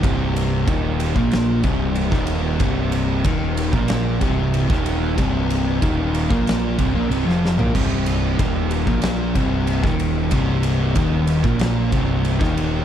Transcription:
<<
  \new Staff \with { instrumentName = "Distorted electric guitar" } { \clef bass \time 4/4 \key c \minor \tempo 4 = 93 <c, c>4 <ees, ees>8. <bes, bes>8. <c, c>8. <ees, ees>8. | <c, c>4 <ees, ees>8. <bes, bes>8. <c, c>8. <ees, ees>8. | <c, c>4 <ees, ees>8. <bes, bes>8. <c, c>16 <bes, bes>16 <c, c>16 <f, f>8 <bes, bes>16 | <c, c>4 <ees, ees>8. <bes, bes>8. <c, c>8. <ees, ees>8. |
<c, c>4 <ees, ees>8. <bes, bes>8. <c, c>8. <ees, ees>8. | }
  \new Staff \with { instrumentName = "Distorted electric guitar" } { \clef bass \time 4/4 \key c \minor <c, c>4 <ees, ees>8. <bes, bes>8. <c, c>8. <ees, ees>8. | <c, c>4 <ees, ees>8. <bes, bes>8. <c, c>8. <ees, ees>8. | <c, c>4 <ees, ees>8. <bes, bes>8. <c, c>16 <bes, bes>16 <c, c>16 <f, f>8 <bes, bes>16 | <c, c>4 <ees, ees>8. <bes, bes>8. <c, c>8. <ees, ees>8. |
<c, c>4 <ees, ees>8. <bes, bes>8. <c, c>8. <ees, ees>8. | }
  \new Staff \with { instrumentName = "Overdriven electric guitar" } { \clef bass \time 4/4 \key c \minor <c, c>4 <ees, ees>8. <bes, bes>8. <c, c>8. <ees, ees>8. | <c, c>4 <ees, ees>8. <bes, bes>8. <c, c>8. <ees, ees>8. | <c, c>4 <ees, ees>8. <bes, bes>8. <c, c>16 <bes, bes>16 <c, c>16 <f, f>8 <bes, bes>16 | <c, c>4 <ees, ees>8. <bes, bes>8. <c, c>8. <ees, ees>8. |
<c, c>4 <ees, ees>8. <bes, bes>8. <c, c>8. <ees, ees>8. | }
  \new Staff \with { instrumentName = "Picked electric bass" } { \clef bass \time 4/4 \key c \minor c,,4 ees,,8. bes,,8. c,,8. ees,,8. | c,,4 ees,,8. bes,,8. c,,8. ees,,8. | c,,4 ees,,8. bes,,8. c,,16 bes,,16 c,,16 f,,8 bes,,16 | c,,4 ees,,8. bes,,8. c,,8. ees,,8. |
c,,4 ees,,8. bes,,8. c,,8. ees,,8. | }
  \new DrumStaff \with { instrumentName = "Drums" } \drummode { \time 4/4 <bd cymr>8 cymr8 <bd cymr>8 cymr16 bd16 <cymr sn>8 <bd cymr>8 cymr16 <bd sn>16 cymr8 | <bd cymr>8 cymr8 <bd cymr>8 cymr16 bd16 <cymr sn>8 <bd cymr>8 cymr16 <bd sn>16 cymr8 | <bd cymr>8 cymr8 <bd cymr>8 cymr16 bd16 <cymr sn>8 <bd cymr>8 cymr16 sn16 sn16 tomfh16 | <cymc bd>8 cymr8 <bd cymr>8 cymr16 bd16 <cymr sn>8 <bd cymr>8 cymr16 <bd sn>16 cymr8 |
<bd cymr>8 cymr8 <bd cymr>8 cymr16 bd16 <cymr sn>8 <bd cymr>8 cymr16 <bd sn>16 cymr8 | }
>>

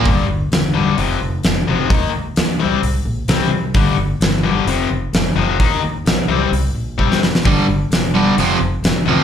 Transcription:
<<
  \new Staff \with { instrumentName = "Distorted electric guitar" } { \clef bass \time 4/4 \key g \minor \tempo 4 = 130 <g, d g>8 r4 <g, d g>8 <f, c f>8 r4 <f, c f>8 | <ees bes ees'>8 r4 <c g c'>8 r4 <c g c'>8 r8 | <g, d g>8 r4 <g, d g>8 <f, c f>8 r4 <f, c f>8 | <ees bes ees'>8 r4 <c g c'>8 r4 <c g c'>8 r8 |
<g, d g>8 r4 <g, d g>8 <f, c f>8 r4 <f, c f>8 | }
  \new Staff \with { instrumentName = "Overdriven electric guitar" } { \clef bass \time 4/4 \key g \minor r1 | r1 | r1 | r1 |
<g, d g>8 r4 <g, d g>8 <f, c f>8 r4 <f, c f>8 | }
  \new Staff \with { instrumentName = "Upright bass" } { \clef bass \time 4/4 \key g \minor g,,8 g,,8 g,,4 f,,8 f,,8 f,,8 f,,8 | ees,8 ees,8 ees,8 c,8 c,8 bes,,8 c,4 | g,,8 g,,8 g,,4 f,,8 f,,8 f,,8 f,,8 | ees,8 ees,8 bes,,8 c,8 c,8 bes,,8 f,,4 |
g,,8 g,,8 e,,4 f,,8 f,,8 f,,8 d,8 | }
  \new DrumStaff \with { instrumentName = "Drums" } \drummode { \time 4/4 <hho bd>4 <hho sn>4 hho4 <hho sn>4 | <hho bd>4 <hho sn>4 hho4 <hho sn>4 | <hho bd>4 <hho sn>4 hho4 <hho sn>4 | <hho bd>4 <hho sn>4 hho4 bd16 sn16 sn16 sn16 |
<hho bd>4 <hho sn>4 hho4 <hho sn>4 | }
>>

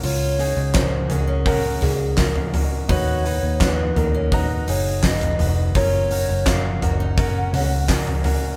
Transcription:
<<
  \new Staff \with { instrumentName = "Soft synth lead" } { \time 4/4 \key ges \lydian \tempo 4 = 84 des''4 c''8 bes'8 bes'8 aes'8 bes'8. r16 | des''4 ces''8 bes'8 ces''8 des''8 ees''8. r16 | des''4 f''8 ges''2 r8 | }
  \new Staff \with { instrumentName = "Grand piano" } { \time 4/4 \key ges \lydian <des' ges' bes'>8 <des' ges' aes'>8 <des' ges' bes'>8 <des' ges' aes'>8 <des' ges' bes'>8 <des' ges' bes'>8 <des' ges' bes'>8 <des' ges' bes'>8 | <ees' ges' ces''>8 <ees' ges' ces''>8 <ees' ges' ces''>8 <ees' ges' bes'>8 <ees' ges' bes''>8 <ees' ges' aes'>8 <ees' ges' ces''>8 <ees' ges' ces''>8 | <ges des' bes'>8 <des' ges' bes'>8 <des' ges' bes'>8 <des' ges' bes'>8 <des' ges' bes'>8 <des' ges' bes'>8 <des' ges' bes'>8 <des' ges' bes'>8 | }
  \new Staff \with { instrumentName = "Grand piano" } { \clef bass \time 4/4 \key ges \lydian des4 r2. | ees4. r2 r8 | r1 | }
  \new Staff \with { instrumentName = "Steel-string acoustic guitar" } { \time 4/4 \key ges \lydian f'8 ees'8 des'16 r8 des'8 r16 bes16 r4 r16 | ges'8 ees'8 des'16 r8 des'8 r16 ees'16 r4 r16 | f'8 ees'8 des'16 r8 ees'8 r16 des'16 r4 r16 | }
  \new Staff \with { instrumentName = "Fingered electric bass" } { \clef bass \time 4/4 \key ges \lydian des,8. des,8. des,4 des,4. | ees,8. ees,8. ees,4 ges,,4 f,,8 | ges,,8. ges,,8. ges,,4 des,4. | }
  \new DrumStaff \with { instrumentName = "Drums" } \drummode { \time 4/4 <hho hhp>8 <hho hhp>8 <hc hho hhp bd sn>8 <hho hhp tomfh>8 <hho hhp bd>8 <hho hhp tomfh>8 <hc hho hhp bd sn>16 tomfh16 <hho hhp tomfh>8 | <hho hhp bd>8 <hho hhp>8 <hc hho hhp bd sn>8 <hho hhp tomfh>8 <hho hhp bd>8 <hho hhp>16 hho16 <hc hho hhp bd sn>16 <hhp tomfh>16 <hho hhp tomfh>8 | <hho hhp bd>8 <hho hhp>8 <hc hho hhp bd sn>8 <hho hhp tomfh>8 <hho hhp bd>8 <hho hhp tomfh>8 <hc hho hhp bd sn>16 tomfh16 <hho hhp tomfh>8 | }
>>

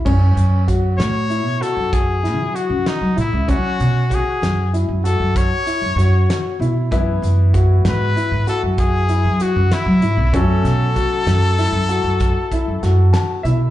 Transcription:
<<
  \new Staff \with { instrumentName = "Trumpet" } { \time 11/8 \key fis \minor \tempo 4 = 96 r4. cis''4 a'8 gis'4 fis'8 dis'8 e'8 | fis'4 gis'4 r8 a'8 cis''2 r8 | r4. b'4 a'8 gis'4 fis'8 e'4 | a'1~ a'8 r4 | }
  \new Staff \with { instrumentName = "Grand piano" } { \time 11/8 \key fis \minor cis'4 fis'4 e'8 fis'4 e'8 fis'4 e'8 | cis'4 fis'4 e'8 fis'4 e'8 fis'4 e'8 | e'4 fis'4 e'8 fis'4 e'8 fis'4 e'8 | cis'4 fis'4 e'8 fis'4 e'8 fis'4 e'8 | }
  \new Staff \with { instrumentName = "Grand piano" } { \time 11/8 \key fis \minor r1 r4. | r1 r4. | r1 r4. | r1 r8 a''8 e''8 | }
  \new Staff \with { instrumentName = "Grand piano" } { \time 11/8 \key fis \minor r1 r4. | r1 r4. | <e b e'>1~ <e b e'>4. | <fis a cis' fis'>1~ <fis a cis' fis'>4. | }
  \new Staff \with { instrumentName = "Upright bass" } { \clef bass \time 11/8 \key fis \minor fis,8 fis,4 a,8. b,16 r16 fis,4 fis8 fis,16 r16 fis16 a,16 cis,16 | fis8 b,8 r8 fis,8. fis,8 fis,8 r8 fis,16 fis,8 r8 b,8 | fis,8 fis,4 gis,8 r16 gis,16 r16 fis,4 fis8 fis,16 r16 fis16 gis,16 b,,16 | fis,8 b,8 r8 fis,8. fis,8 fis,8 r8 fis,16 fis,8 r8 b,8 | }
  \new DrumStaff \with { instrumentName = "Drums" } \drummode { \time 11/8 <cymc bd>8 hh8 <hh bd>8 <hh sn>8 hh8 hh8 <hh bd>8 <hh sn>8 hh8 <hh sn>8 hh8 | <hh bd>8 hh8 <hh bd>8 <hh sn>8 hh8 hh8 <hh bd>8 hh8 hh8 <hh sn>8 hh8 | <hh bd>8 hh8 <hh bd>8 <hh sn>8 hh8 hh8 <hh bd>8 hh8 hh8 <hh sn>8 hh8 | <hh bd>8 <hh sn>8 <hh bd>8 <hh sn>8 <hh sn>8 hh8 <hh bd>8 <hh bd>8 <hh sn>8 <hh sn>8 hh8 | }
>>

